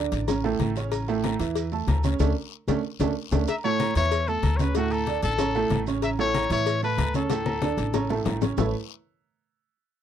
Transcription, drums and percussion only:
0.12 cowbell, high conga, short guiro, maracas
0.28 cowbell, high conga, low conga, low agogo, long guiro, maracas
0.45 high conga, maracas
0.60 cowbell, high conga, low agogo, short guiro, maracas
0.76 high conga, short guiro, maracas
0.92 cowbell, high conga, low agogo, long guiro, maracas
1.08 high conga, maracas
1.24 cowbell, high conga, low agogo, short guiro, maracas
1.40 cowbell, high conga, short guiro, maracas
1.55 cowbell, high conga, low agogo, long guiro, maracas
1.72 high conga, maracas
1.88 cowbell, high conga, low timbale, low agogo, short guiro, maracas
2.03 high conga, short guiro, maracas
2.19 cowbell, high conga, high timbale, long guiro, maracas
2.68 cowbell, high conga, high timbale, long guiro, maracas
3.00 cowbell, high conga, high timbale, long guiro, maracas
3.32 cowbell, high conga, high timbale, long guiro, maracas
3.47 cowbell, high conga, low agogo, long guiro, maracas
3.64 high conga, maracas
3.80 cowbell, high conga, low agogo, short guiro, maracas
3.95 cowbell, high conga, short guiro, maracas
4.11 cowbell, high conga, low agogo, long guiro, maracas
4.28 high conga, maracas
4.43 cowbell, high conga, low agogo, short guiro, maracas
4.59 high conga, short guiro, maracas
4.75 cowbell, high conga, low agogo, long guiro, maracas
4.91 high conga, low agogo, maracas
5.07 cowbell, high conga, short guiro, maracas
5.23 cowbell, high conga, short guiro, maracas
5.38 cowbell, high conga, low conga, low agogo, long guiro, maracas
5.55 high conga, maracas
5.70 cowbell, high conga, low timbale, low agogo, short guiro, maracas
5.87 high conga, short guiro, maracas
6.02 cowbell, high conga, low agogo, long guiro, maracas
6.18 high conga, maracas
6.34 cowbell, high conga, low agogo, short guiro, maracas
6.50 cowbell, high conga, short guiro, maracas
6.66 cowbell, high conga, low agogo, long guiro, maracas
6.82 high conga, maracas
6.98 cowbell, high conga, low timbale, low agogo, short guiro, maracas
7.14 high conga, short guiro, maracas
7.30 cowbell, high conga, low agogo, long guiro, maracas
7.46 high conga, low agogo, maracas
7.62 cowbell, high conga, short guiro, maracas
7.78 cowbell, short guiro, maracas
7.94 cowbell, high bongo, low conga, low agogo, long guiro, maracas
8.10 low conga, maracas
8.26 cowbell, low conga, low timbale, low agogo, short guiro, maracas
8.42 low bongo, low conga, short guiro, maracas
8.58 low bongo, low conga, low timbale, long guiro, maracas

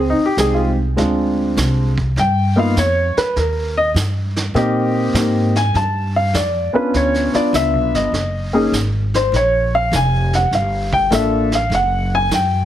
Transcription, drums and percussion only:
0.37 snare, hi-hat pedal
0.98 brush sweep, snare
1.57 snare, hi-hat pedal
1.98 kick
2.17 brush sweep, snare
2.76 snare, hi-hat pedal
3.17 snare
3.36 brush sweep, snare
3.96 snare, hi-hat pedal
4.36 snare
4.56 brush sweep, snare
5.15 snare, hi-hat pedal
5.56 snare
5.75 brush sweep, snare
6.34 snare, hi-hat pedal
6.94 brush sweep, snare
7.14 snare
7.34 snare
7.54 snare, hi-hat pedal
7.95 snare
8.14 brush sweep, snare
8.73 snare, hi-hat pedal
9.14 snare
9.33 brush sweep, snare
9.92 snare, hi-hat pedal
10.33 snare
10.52 brush sweep, snare
10.93 kick
11.11 snare, hi-hat pedal
11.52 snare
11.71 brush sweep, snare
12.31 snare, hi-hat pedal

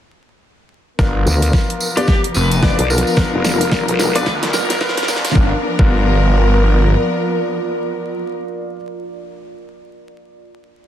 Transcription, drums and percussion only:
0.99 kick, snare, tambourine
1.27 tambourine
1.42 closed hi-hat, tambourine
1.53 kick, snare, tambourine
1.70 closed hi-hat
1.81 tambourine
1.97 closed hi-hat
2.07 kick, snare, tambourine
2.24 closed hi-hat
2.34 tambourine
2.51 closed hi-hat, tambourine
2.63 kick, snare, tambourine
2.79 closed hi-hat
2.90 tambourine
2.98 closed hi-hat
3.07 tambourine
3.17 kick, snare, tambourine
3.45 snare, tambourine
3.61 closed hi-hat, tambourine
3.72 kick, snare, tambourine
3.88 closed hi-hat
3.99 snare, tambourine
4.15 closed hi-hat, tambourine
4.26 kick, snare, tambourine
4.43 snare, closed hi-hat
4.53 snare, tambourine
4.70 snare, closed hi-hat, tambourine
4.80 kick, snare, tambourine
4.89 snare
4.97 snare, closed hi-hat
5.03 snare
5.08 snare, tambourine
5.16 snare
5.25 snare, closed hi-hat, tambourine
5.30 snare
5.35 kick
5.79 kick

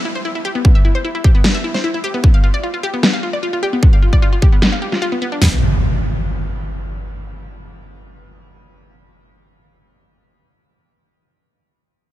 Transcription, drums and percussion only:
0.65 kick
1.24 kick
1.44 snare
1.74 snare
2.24 kick
3.03 snare
3.83 kick
4.13 kick
4.42 kick
4.62 snare
4.92 snare
5.42 snare, floor tom

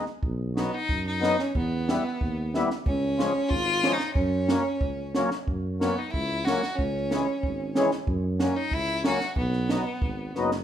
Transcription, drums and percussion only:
0.06 snare
0.23 kick
0.57 snare
0.89 kick
1.23 snare
1.39 snare
1.55 kick
1.89 snare
2.21 kick
2.54 snare
2.71 snare
2.86 kick
3.20 snare
3.51 kick
3.84 snare
4.00 snare
4.15 kick
4.49 snare
4.81 kick
5.15 snare
5.31 snare
5.48 kick
5.81 snare
6.14 kick
6.47 snare
6.63 snare
6.79 kick
7.11 snare
7.43 kick
7.75 snare
7.91 snare
8.07 kick
8.40 snare
8.72 kick
9.04 snare
9.21 snare
9.36 kick
9.53 snare
9.69 snare
10.02 kick
10.35 snare
10.52 snare

